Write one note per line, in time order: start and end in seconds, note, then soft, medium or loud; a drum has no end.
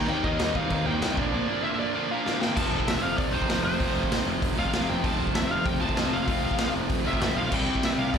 0.08 0.23 D#2 loud
0.08 0.23 D#3 medium
0.08 0.24 G3 medium
0.08 0.25 A#3 loud
0.08 0.24 D#4 loud
0.08 0.24 G5 loud
0.08 crash medium
0.24 0.39 D#2 medium
0.24 0.40 D#3 medium
0.24 0.39 G3 medium
0.24 0.40 A#3 medium
0.24 0.39 D#4 loud
0.24 0.53 D#5 loud
0.24 kick medium
0.39 0.54 D#2 medium
0.39 0.54 D#3 medium
0.39 0.55 G3 medium
0.39 0.55 A#3 medium
0.39 0.55 D#4 loud
0.39 snare loud
0.39 crash medium
0.55 0.70 D#2 medium
0.55 0.71 D#3 medium
0.55 0.70 G3 medium
0.55 0.70 A#3 medium
0.55 0.70 D#4 medium
0.55 0.86 F5 medium
0.55 kick loud
0.70 0.86 D#2 loud
0.70 0.85 D#3 medium
0.70 0.85 G3 medium
0.70 0.85 A#3 medium
0.70 0.85 D#4 loud
0.70 kick medium
0.70 crash medium
0.86 1.01 D#2 medium
0.86 1.01 D#3 medium
0.86 1.01 G3 medium
0.86 1.00 A#3 loud
0.86 1.00 D#4 medium
0.86 1.15 G5 medium
1.01 1.17 C2 medium
1.01 1.16 D#3 medium
1.01 1.17 G3 medium
1.01 1.16 A#3 medium
1.01 1.16 D#4 loud
1.01 snare loud
1.01 crash medium
1.16 1.32 A#1 medium
1.16 1.32 A#2 medium
1.16 1.31 D3 loud
1.16 1.31 F3 loud
1.16 1.31 A#3 loud
1.16 1.30 D4 loud
1.16 1.63 D5 medium
1.16 kick loud
1.32 1.46 A#2 medium
1.32 1.46 D3 medium
1.32 1.47 F3 loud
1.32 1.47 A#3 medium
1.32 1.47 D4 loud
1.47 1.63 A#2 medium
1.47 1.63 D3 loud
1.47 1.62 F3 medium
1.47 1.62 A#3 medium
1.47 1.61 D4 loud
1.63 1.77 A#2 medium
1.63 1.77 D3 medium
1.63 1.78 F3 medium
1.63 1.78 A#3 medium
1.63 1.78 D4 loud
1.63 1.78 E5 medium
1.78 1.94 A#2 medium
1.78 1.93 D3 medium
1.78 1.93 F3 medium
1.78 1.93 A#3 medium
1.78 1.93 D4 medium
1.78 2.23 D5 medium
1.94 2.08 A#2 medium
1.94 2.09 D3 medium
1.94 2.09 F3 loud
1.94 2.09 A#3 loud
1.94 2.10 D4 medium
2.09 2.24 A#2 medium
2.09 2.24 D3 medium
2.09 2.24 F3 medium
2.09 2.23 A#3 medium
2.09 2.23 D4 medium
2.09 2.41 F5 medium
2.25 2.39 A#2 medium
2.25 2.39 D3 medium
2.25 2.39 F3 loud
2.25 2.39 A#3 medium
2.25 2.40 D4 loud
2.25 snare medium
2.40 2.55 A#2 loud
2.40 2.55 D3 medium
2.40 2.54 F3 medium
2.40 2.56 A#3 loud
2.40 2.56 D4 loud
2.40 2.56 G5 loud
2.40 snare medium
2.55 2.71 F1 loud
2.55 3.35 F2 medium
2.55 3.33 C3 loud
2.55 3.34 F3 loud
2.55 3.34 A3 loud
2.55 3.33 C4 loud
2.55 3.32 F4 loud
2.55 2.89 A5 loud
2.55 kick loud
2.55 crash loud
2.72 2.86 F1 medium
2.80 kick medium
2.87 3.02 F1 medium
2.87 3.03 E5 medium
2.87 snare loud
2.87 open hi-hat medium
3.03 3.17 F1 medium
3.03 3.17 F5 medium
3.18 3.32 F1 medium
3.18 3.34 D5 medium
3.18 kick loud
3.18 open hi-hat medium
3.33 3.48 F1 loud
3.33 3.47 F2 medium
3.33 3.48 C3 medium
3.33 3.48 F3 medium
3.33 3.48 A3 medium
3.33 3.49 C4 medium
3.33 3.50 F4 medium
3.33 3.63 C5 medium
3.42 kick medium
3.47 3.64 F1 medium
3.47 3.78 F2 medium
3.47 3.80 C3 loud
3.47 3.78 F3 loud
3.47 3.79 A3 medium
3.47 3.80 C4 medium
3.47 3.80 F4 medium
3.47 snare loud
3.47 open hi-hat medium
3.64 3.79 F1 medium
3.64 4.23 C5 medium
3.78 4.08 F1 loud
3.78 4.59 F2 medium
3.78 4.57 C3 loud
3.78 4.58 F3 loud
3.78 4.58 A3 loud
3.78 4.57 C4 loud
3.78 4.56 F4 loud
3.78 kick loud
3.78 open hi-hat medium
4.03 kick medium
4.11 4.25 F1 medium
4.11 snare loud
4.11 open hi-hat medium
4.26 4.41 F1 medium
4.42 4.57 F1 loud
4.42 kick loud
4.42 open hi-hat medium
4.57 4.72 F1 loud
4.57 4.72 F2 medium
4.57 4.73 C3 medium
4.57 4.72 F3 medium
4.57 4.73 A3 medium
4.57 4.74 C4 medium
4.57 4.74 F4 loud
4.57 4.87 F5 medium
4.65 kick medium
4.73 4.88 F1 medium
4.73 5.03 F2 medium
4.73 5.04 C3 medium
4.73 5.02 F3 medium
4.73 5.03 A3 medium
4.73 5.04 C4 loud
4.73 5.04 F4 medium
4.73 snare loud
4.73 open hi-hat medium
4.90 5.03 F1 loud
4.90 5.05 G5 loud
5.03 5.18 F1 loud
5.03 5.80 F2 medium
5.03 5.81 C3 loud
5.03 5.80 F3 loud
5.03 5.80 A3 medium
5.03 5.80 C4 loud
5.03 5.79 F4 loud
5.03 5.36 A5 loud
5.03 kick loud
5.03 open hi-hat medium
5.07 5.79 F3 loud
5.19 5.34 F1 medium
5.27 kick medium
5.35 5.50 F1 medium
5.35 5.51 E5 medium
5.35 snare loud
5.35 open hi-hat medium
5.51 5.65 F1 medium
5.51 5.67 F5 medium
5.65 5.80 F1 loud
5.65 5.80 G5 loud
5.65 kick loud
5.65 open hi-hat medium
5.80 5.96 F1 medium
5.80 5.97 C3 medium
5.80 5.94 F3 medium
5.80 5.95 A3 medium
5.80 5.97 C4 medium
5.80 5.95 F4 medium
5.80 6.13 A5 loud
5.84 5.95 F2 medium
5.89 kick medium
5.95 6.11 F1 medium
5.95 6.25 F2 loud
5.95 6.27 C3 medium
5.95 6.26 F3 medium
5.95 6.27 A3 medium
5.95 6.28 C4 medium
5.95 6.27 F4 medium
5.95 snare loud
5.95 open hi-hat medium
6.00 6.29 F3 loud
6.13 6.27 F1 medium
6.13 6.71 F5 medium
6.27 6.56 F1 loud
6.27 7.04 F2 medium
6.27 7.05 C3 medium
6.27 7.04 F3 loud
6.27 7.04 A3 medium
6.27 7.05 C4 loud
6.27 7.03 F4 loud
6.27 kick loud
6.27 open hi-hat medium
6.51 kick medium
6.58 6.74 F1 medium
6.58 snare loud
6.58 open hi-hat medium
6.76 6.89 F1 medium
6.89 7.04 F1 loud
6.89 kick loud
6.89 open hi-hat medium
7.04 7.20 F1 medium
7.04 7.21 C3 medium
7.04 7.19 F3 medium
7.04 7.20 A3 medium
7.04 7.22 C4 medium
7.04 7.20 F4 medium
7.04 7.37 E5 medium
7.09 7.18 F2 medium
7.13 kick medium
7.20 7.36 F1 medium
7.20 7.50 F2 medium
7.20 7.50 C3 medium
7.20 7.51 F3 medium
7.20 7.51 A3 medium
7.20 7.53 C4 medium
7.20 7.52 F4 medium
7.20 snare loud
7.20 open hi-hat medium
7.37 7.51 B1 loud
7.37 7.52 F5 medium
7.52 7.66 C2 loud
7.52 8.18 C3 medium
7.52 8.18 G3 loud
7.52 8.18 C4 loud
7.52 8.18 E4 loud
7.52 7.82 G5 loud
7.52 kick loud
7.52 crash loud
7.68 7.82 C2 medium
7.75 kick medium
7.83 7.97 C2 medium
7.83 7.90 E5 loud
7.83 snare loud
7.83 open hi-hat medium
7.98 8.12 C2 medium
7.98 8.14 F5 medium
8.14 8.18 C2 loud
8.14 8.18 D5 medium
8.14 kick loud
8.14 open hi-hat medium